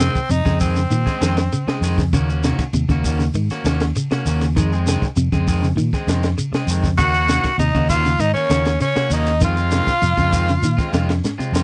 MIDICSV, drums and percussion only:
0, 0, Header, 1, 3, 480
1, 0, Start_track
1, 0, Tempo, 607903
1, 1677, Time_signature, 4, 2, 24, 8
1, 9185, End_track
2, 0, Start_track
2, 0, Title_t, "Shekere"
2, 0, Note_on_c, 9, 82, 75
2, 78, Note_off_c, 9, 82, 0
2, 123, Note_on_c, 9, 82, 31
2, 202, Note_off_c, 9, 82, 0
2, 236, Note_on_c, 9, 82, 87
2, 315, Note_off_c, 9, 82, 0
2, 358, Note_on_c, 9, 82, 30
2, 437, Note_off_c, 9, 82, 0
2, 474, Note_on_c, 9, 82, 71
2, 553, Note_off_c, 9, 82, 0
2, 597, Note_on_c, 9, 82, 34
2, 676, Note_off_c, 9, 82, 0
2, 718, Note_on_c, 9, 82, 85
2, 797, Note_off_c, 9, 82, 0
2, 844, Note_on_c, 9, 82, 32
2, 923, Note_off_c, 9, 82, 0
2, 965, Note_on_c, 9, 82, 69
2, 1044, Note_off_c, 9, 82, 0
2, 1082, Note_on_c, 9, 82, 33
2, 1161, Note_off_c, 9, 82, 0
2, 1208, Note_on_c, 9, 82, 105
2, 1287, Note_off_c, 9, 82, 0
2, 1328, Note_on_c, 9, 82, 29
2, 1407, Note_off_c, 9, 82, 0
2, 1447, Note_on_c, 9, 82, 69
2, 1526, Note_off_c, 9, 82, 0
2, 1571, Note_on_c, 9, 82, 33
2, 1650, Note_off_c, 9, 82, 0
2, 1689, Note_on_c, 9, 82, 95
2, 1768, Note_off_c, 9, 82, 0
2, 1811, Note_on_c, 9, 82, 29
2, 1890, Note_off_c, 9, 82, 0
2, 1924, Note_on_c, 9, 82, 76
2, 2003, Note_off_c, 9, 82, 0
2, 2049, Note_on_c, 9, 82, 31
2, 2128, Note_off_c, 9, 82, 0
2, 2164, Note_on_c, 9, 82, 81
2, 2243, Note_off_c, 9, 82, 0
2, 2283, Note_on_c, 9, 82, 31
2, 2362, Note_off_c, 9, 82, 0
2, 2405, Note_on_c, 9, 82, 79
2, 2484, Note_off_c, 9, 82, 0
2, 2525, Note_on_c, 9, 82, 33
2, 2604, Note_off_c, 9, 82, 0
2, 2638, Note_on_c, 9, 82, 93
2, 2717, Note_off_c, 9, 82, 0
2, 2765, Note_on_c, 9, 82, 31
2, 2844, Note_off_c, 9, 82, 0
2, 2883, Note_on_c, 9, 82, 66
2, 2962, Note_off_c, 9, 82, 0
2, 3006, Note_on_c, 9, 82, 32
2, 3085, Note_off_c, 9, 82, 0
2, 3127, Note_on_c, 9, 82, 100
2, 3206, Note_off_c, 9, 82, 0
2, 3248, Note_on_c, 9, 82, 31
2, 3327, Note_off_c, 9, 82, 0
2, 3364, Note_on_c, 9, 82, 70
2, 3443, Note_off_c, 9, 82, 0
2, 3492, Note_on_c, 9, 82, 32
2, 3571, Note_off_c, 9, 82, 0
2, 3612, Note_on_c, 9, 82, 91
2, 3691, Note_off_c, 9, 82, 0
2, 3731, Note_on_c, 9, 82, 32
2, 3810, Note_off_c, 9, 82, 0
2, 3847, Note_on_c, 9, 82, 67
2, 3926, Note_off_c, 9, 82, 0
2, 3966, Note_on_c, 9, 82, 27
2, 4044, Note_off_c, 9, 82, 0
2, 4079, Note_on_c, 9, 82, 88
2, 4158, Note_off_c, 9, 82, 0
2, 4207, Note_on_c, 9, 82, 31
2, 4286, Note_off_c, 9, 82, 0
2, 4325, Note_on_c, 9, 82, 71
2, 4404, Note_off_c, 9, 82, 0
2, 4449, Note_on_c, 9, 82, 35
2, 4528, Note_off_c, 9, 82, 0
2, 4568, Note_on_c, 9, 82, 96
2, 4646, Note_off_c, 9, 82, 0
2, 4689, Note_on_c, 9, 82, 34
2, 4768, Note_off_c, 9, 82, 0
2, 4805, Note_on_c, 9, 82, 66
2, 4884, Note_off_c, 9, 82, 0
2, 4921, Note_on_c, 9, 82, 32
2, 5000, Note_off_c, 9, 82, 0
2, 5042, Note_on_c, 9, 82, 102
2, 5121, Note_off_c, 9, 82, 0
2, 5164, Note_on_c, 9, 82, 29
2, 5243, Note_off_c, 9, 82, 0
2, 5276, Note_on_c, 9, 82, 79
2, 5355, Note_off_c, 9, 82, 0
2, 5400, Note_on_c, 9, 82, 32
2, 5479, Note_off_c, 9, 82, 0
2, 5518, Note_on_c, 9, 82, 92
2, 5597, Note_off_c, 9, 82, 0
2, 5637, Note_on_c, 9, 82, 33
2, 5716, Note_off_c, 9, 82, 0
2, 5757, Note_on_c, 9, 82, 70
2, 5836, Note_off_c, 9, 82, 0
2, 5877, Note_on_c, 9, 82, 29
2, 5956, Note_off_c, 9, 82, 0
2, 5999, Note_on_c, 9, 82, 85
2, 6078, Note_off_c, 9, 82, 0
2, 6116, Note_on_c, 9, 82, 30
2, 6195, Note_off_c, 9, 82, 0
2, 6234, Note_on_c, 9, 82, 72
2, 6313, Note_off_c, 9, 82, 0
2, 6358, Note_on_c, 9, 82, 34
2, 6437, Note_off_c, 9, 82, 0
2, 6473, Note_on_c, 9, 82, 89
2, 6552, Note_off_c, 9, 82, 0
2, 6597, Note_on_c, 9, 82, 31
2, 6676, Note_off_c, 9, 82, 0
2, 6715, Note_on_c, 9, 82, 70
2, 6794, Note_off_c, 9, 82, 0
2, 6837, Note_on_c, 9, 82, 30
2, 6916, Note_off_c, 9, 82, 0
2, 6955, Note_on_c, 9, 82, 96
2, 7034, Note_off_c, 9, 82, 0
2, 7075, Note_on_c, 9, 82, 33
2, 7154, Note_off_c, 9, 82, 0
2, 7190, Note_on_c, 9, 82, 69
2, 7269, Note_off_c, 9, 82, 0
2, 7318, Note_on_c, 9, 82, 35
2, 7397, Note_off_c, 9, 82, 0
2, 7430, Note_on_c, 9, 82, 103
2, 7509, Note_off_c, 9, 82, 0
2, 7557, Note_on_c, 9, 82, 32
2, 7636, Note_off_c, 9, 82, 0
2, 7668, Note_on_c, 9, 82, 72
2, 7747, Note_off_c, 9, 82, 0
2, 7794, Note_on_c, 9, 82, 32
2, 7873, Note_off_c, 9, 82, 0
2, 7914, Note_on_c, 9, 82, 85
2, 7993, Note_off_c, 9, 82, 0
2, 8034, Note_on_c, 9, 82, 28
2, 8113, Note_off_c, 9, 82, 0
2, 8155, Note_on_c, 9, 82, 78
2, 8234, Note_off_c, 9, 82, 0
2, 8278, Note_on_c, 9, 82, 33
2, 8357, Note_off_c, 9, 82, 0
2, 8395, Note_on_c, 9, 82, 93
2, 8474, Note_off_c, 9, 82, 0
2, 8518, Note_on_c, 9, 82, 31
2, 8597, Note_off_c, 9, 82, 0
2, 8635, Note_on_c, 9, 82, 61
2, 8714, Note_off_c, 9, 82, 0
2, 8764, Note_on_c, 9, 82, 29
2, 8843, Note_off_c, 9, 82, 0
2, 8879, Note_on_c, 9, 82, 90
2, 8958, Note_off_c, 9, 82, 0
2, 9003, Note_on_c, 9, 82, 30
2, 9082, Note_off_c, 9, 82, 0
2, 9118, Note_on_c, 9, 82, 75
2, 9185, Note_off_c, 9, 82, 0
2, 9185, End_track
3, 0, Start_track
3, 0, Title_t, "Drums"
3, 0, Note_on_c, 9, 53, 48
3, 7, Note_on_c, 9, 38, 69
3, 78, Note_off_c, 9, 53, 0
3, 86, Note_off_c, 9, 38, 0
3, 121, Note_on_c, 9, 36, 67
3, 200, Note_off_c, 9, 36, 0
3, 244, Note_on_c, 9, 53, 59
3, 323, Note_off_c, 9, 53, 0
3, 362, Note_on_c, 9, 36, 75
3, 372, Note_on_c, 9, 38, 30
3, 441, Note_off_c, 9, 36, 0
3, 451, Note_off_c, 9, 38, 0
3, 482, Note_on_c, 9, 36, 72
3, 485, Note_on_c, 9, 46, 61
3, 561, Note_off_c, 9, 36, 0
3, 564, Note_off_c, 9, 46, 0
3, 613, Note_on_c, 9, 38, 33
3, 692, Note_off_c, 9, 38, 0
3, 728, Note_on_c, 9, 53, 53
3, 806, Note_off_c, 9, 53, 0
3, 841, Note_on_c, 9, 36, 73
3, 852, Note_on_c, 9, 38, 30
3, 920, Note_off_c, 9, 36, 0
3, 930, Note_off_c, 9, 38, 0
3, 959, Note_on_c, 9, 53, 59
3, 967, Note_on_c, 9, 38, 76
3, 1038, Note_off_c, 9, 53, 0
3, 1046, Note_off_c, 9, 38, 0
3, 1080, Note_on_c, 9, 53, 54
3, 1088, Note_on_c, 9, 38, 77
3, 1159, Note_off_c, 9, 53, 0
3, 1167, Note_off_c, 9, 38, 0
3, 1203, Note_on_c, 9, 53, 54
3, 1282, Note_off_c, 9, 53, 0
3, 1329, Note_on_c, 9, 38, 75
3, 1408, Note_off_c, 9, 38, 0
3, 1441, Note_on_c, 9, 46, 63
3, 1449, Note_on_c, 9, 38, 28
3, 1520, Note_off_c, 9, 46, 0
3, 1528, Note_off_c, 9, 38, 0
3, 1563, Note_on_c, 9, 36, 68
3, 1573, Note_on_c, 9, 38, 30
3, 1641, Note_off_c, 9, 36, 0
3, 1652, Note_off_c, 9, 38, 0
3, 1682, Note_on_c, 9, 36, 101
3, 1682, Note_on_c, 9, 53, 58
3, 1690, Note_on_c, 9, 38, 30
3, 1761, Note_off_c, 9, 36, 0
3, 1761, Note_off_c, 9, 53, 0
3, 1769, Note_off_c, 9, 38, 0
3, 1923, Note_on_c, 9, 53, 57
3, 1930, Note_on_c, 9, 38, 66
3, 2001, Note_off_c, 9, 53, 0
3, 2009, Note_off_c, 9, 38, 0
3, 2042, Note_on_c, 9, 53, 61
3, 2043, Note_on_c, 9, 36, 68
3, 2050, Note_on_c, 9, 38, 28
3, 2121, Note_off_c, 9, 53, 0
3, 2122, Note_off_c, 9, 36, 0
3, 2129, Note_off_c, 9, 38, 0
3, 2158, Note_on_c, 9, 53, 63
3, 2237, Note_off_c, 9, 53, 0
3, 2283, Note_on_c, 9, 36, 72
3, 2289, Note_on_c, 9, 38, 28
3, 2362, Note_off_c, 9, 36, 0
3, 2368, Note_off_c, 9, 38, 0
3, 2400, Note_on_c, 9, 46, 73
3, 2402, Note_on_c, 9, 36, 73
3, 2479, Note_off_c, 9, 46, 0
3, 2481, Note_off_c, 9, 36, 0
3, 2530, Note_on_c, 9, 38, 31
3, 2609, Note_off_c, 9, 38, 0
3, 2647, Note_on_c, 9, 53, 60
3, 2725, Note_off_c, 9, 53, 0
3, 2775, Note_on_c, 9, 38, 32
3, 2854, Note_off_c, 9, 38, 0
3, 2886, Note_on_c, 9, 53, 62
3, 2894, Note_on_c, 9, 38, 80
3, 2965, Note_off_c, 9, 53, 0
3, 2973, Note_off_c, 9, 38, 0
3, 3002, Note_on_c, 9, 53, 54
3, 3010, Note_on_c, 9, 38, 77
3, 3081, Note_off_c, 9, 53, 0
3, 3089, Note_off_c, 9, 38, 0
3, 3123, Note_on_c, 9, 53, 54
3, 3202, Note_off_c, 9, 53, 0
3, 3253, Note_on_c, 9, 38, 74
3, 3331, Note_off_c, 9, 38, 0
3, 3364, Note_on_c, 9, 46, 62
3, 3372, Note_on_c, 9, 38, 32
3, 3443, Note_off_c, 9, 46, 0
3, 3451, Note_off_c, 9, 38, 0
3, 3484, Note_on_c, 9, 53, 55
3, 3491, Note_on_c, 9, 38, 29
3, 3563, Note_off_c, 9, 53, 0
3, 3570, Note_off_c, 9, 38, 0
3, 3605, Note_on_c, 9, 53, 57
3, 3606, Note_on_c, 9, 36, 90
3, 3684, Note_off_c, 9, 53, 0
3, 3685, Note_off_c, 9, 36, 0
3, 3849, Note_on_c, 9, 53, 55
3, 3857, Note_on_c, 9, 38, 74
3, 3928, Note_off_c, 9, 53, 0
3, 3936, Note_off_c, 9, 38, 0
3, 3965, Note_on_c, 9, 36, 73
3, 3972, Note_on_c, 9, 38, 26
3, 4044, Note_off_c, 9, 36, 0
3, 4051, Note_off_c, 9, 38, 0
3, 4084, Note_on_c, 9, 53, 53
3, 4163, Note_off_c, 9, 53, 0
3, 4203, Note_on_c, 9, 36, 75
3, 4208, Note_on_c, 9, 38, 27
3, 4282, Note_off_c, 9, 36, 0
3, 4287, Note_off_c, 9, 38, 0
3, 4324, Note_on_c, 9, 36, 77
3, 4325, Note_on_c, 9, 46, 66
3, 4403, Note_off_c, 9, 36, 0
3, 4404, Note_off_c, 9, 46, 0
3, 4454, Note_on_c, 9, 38, 32
3, 4533, Note_off_c, 9, 38, 0
3, 4563, Note_on_c, 9, 53, 53
3, 4642, Note_off_c, 9, 53, 0
3, 4682, Note_on_c, 9, 36, 69
3, 4688, Note_on_c, 9, 38, 31
3, 4761, Note_off_c, 9, 36, 0
3, 4767, Note_off_c, 9, 38, 0
3, 4802, Note_on_c, 9, 53, 54
3, 4810, Note_on_c, 9, 38, 74
3, 4881, Note_off_c, 9, 53, 0
3, 4889, Note_off_c, 9, 38, 0
3, 4919, Note_on_c, 9, 53, 51
3, 4927, Note_on_c, 9, 38, 69
3, 4998, Note_off_c, 9, 53, 0
3, 5006, Note_off_c, 9, 38, 0
3, 5040, Note_on_c, 9, 53, 55
3, 5119, Note_off_c, 9, 53, 0
3, 5168, Note_on_c, 9, 38, 68
3, 5247, Note_off_c, 9, 38, 0
3, 5276, Note_on_c, 9, 46, 64
3, 5355, Note_off_c, 9, 46, 0
3, 5398, Note_on_c, 9, 36, 71
3, 5401, Note_on_c, 9, 38, 32
3, 5477, Note_off_c, 9, 36, 0
3, 5480, Note_off_c, 9, 38, 0
3, 5513, Note_on_c, 9, 53, 57
3, 5516, Note_on_c, 9, 36, 97
3, 5521, Note_on_c, 9, 38, 31
3, 5592, Note_off_c, 9, 53, 0
3, 5595, Note_off_c, 9, 36, 0
3, 5600, Note_off_c, 9, 38, 0
3, 5751, Note_on_c, 9, 53, 56
3, 5758, Note_on_c, 9, 38, 67
3, 5830, Note_off_c, 9, 53, 0
3, 5837, Note_off_c, 9, 38, 0
3, 5872, Note_on_c, 9, 53, 57
3, 5877, Note_on_c, 9, 36, 64
3, 5880, Note_on_c, 9, 38, 27
3, 5951, Note_off_c, 9, 53, 0
3, 5956, Note_off_c, 9, 36, 0
3, 5959, Note_off_c, 9, 38, 0
3, 5995, Note_on_c, 9, 53, 59
3, 6074, Note_off_c, 9, 53, 0
3, 6117, Note_on_c, 9, 36, 75
3, 6196, Note_off_c, 9, 36, 0
3, 6233, Note_on_c, 9, 46, 65
3, 6235, Note_on_c, 9, 36, 74
3, 6312, Note_off_c, 9, 46, 0
3, 6314, Note_off_c, 9, 36, 0
3, 6474, Note_on_c, 9, 53, 59
3, 6553, Note_off_c, 9, 53, 0
3, 6711, Note_on_c, 9, 53, 58
3, 6719, Note_on_c, 9, 38, 81
3, 6790, Note_off_c, 9, 53, 0
3, 6798, Note_off_c, 9, 38, 0
3, 6832, Note_on_c, 9, 53, 62
3, 6840, Note_on_c, 9, 38, 79
3, 6911, Note_off_c, 9, 53, 0
3, 6919, Note_off_c, 9, 38, 0
3, 6952, Note_on_c, 9, 53, 59
3, 7031, Note_off_c, 9, 53, 0
3, 7078, Note_on_c, 9, 38, 73
3, 7157, Note_off_c, 9, 38, 0
3, 7192, Note_on_c, 9, 46, 68
3, 7271, Note_off_c, 9, 46, 0
3, 7316, Note_on_c, 9, 53, 57
3, 7324, Note_on_c, 9, 38, 29
3, 7395, Note_off_c, 9, 53, 0
3, 7403, Note_off_c, 9, 38, 0
3, 7435, Note_on_c, 9, 36, 99
3, 7435, Note_on_c, 9, 53, 64
3, 7443, Note_on_c, 9, 38, 31
3, 7514, Note_off_c, 9, 36, 0
3, 7514, Note_off_c, 9, 53, 0
3, 7522, Note_off_c, 9, 38, 0
3, 7670, Note_on_c, 9, 53, 50
3, 7678, Note_on_c, 9, 38, 66
3, 7749, Note_off_c, 9, 53, 0
3, 7757, Note_off_c, 9, 38, 0
3, 7794, Note_on_c, 9, 36, 67
3, 7801, Note_on_c, 9, 38, 30
3, 7873, Note_off_c, 9, 36, 0
3, 7880, Note_off_c, 9, 38, 0
3, 7913, Note_on_c, 9, 53, 54
3, 7992, Note_off_c, 9, 53, 0
3, 8034, Note_on_c, 9, 36, 70
3, 8113, Note_off_c, 9, 36, 0
3, 8153, Note_on_c, 9, 46, 63
3, 8154, Note_on_c, 9, 36, 74
3, 8232, Note_off_c, 9, 46, 0
3, 8233, Note_off_c, 9, 36, 0
3, 8397, Note_on_c, 9, 53, 53
3, 8476, Note_off_c, 9, 53, 0
3, 8515, Note_on_c, 9, 36, 79
3, 8525, Note_on_c, 9, 38, 31
3, 8594, Note_off_c, 9, 36, 0
3, 8604, Note_off_c, 9, 38, 0
3, 8634, Note_on_c, 9, 53, 59
3, 8642, Note_on_c, 9, 38, 77
3, 8713, Note_off_c, 9, 53, 0
3, 8721, Note_off_c, 9, 38, 0
3, 8756, Note_on_c, 9, 53, 51
3, 8764, Note_on_c, 9, 38, 70
3, 8835, Note_off_c, 9, 53, 0
3, 8843, Note_off_c, 9, 38, 0
3, 8884, Note_on_c, 9, 38, 56
3, 8963, Note_off_c, 9, 38, 0
3, 9125, Note_on_c, 9, 38, 78
3, 9185, Note_off_c, 9, 38, 0
3, 9185, End_track
0, 0, End_of_file